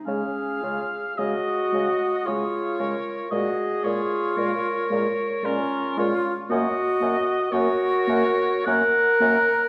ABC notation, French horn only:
X:1
M:3/4
L:1/8
Q:1/4=56
K:Db
V:1 name="French horn" clef=bass
A, A, A, A, A, A, | A, A, A, A, A, A, | B, B, B, B, B, B, |]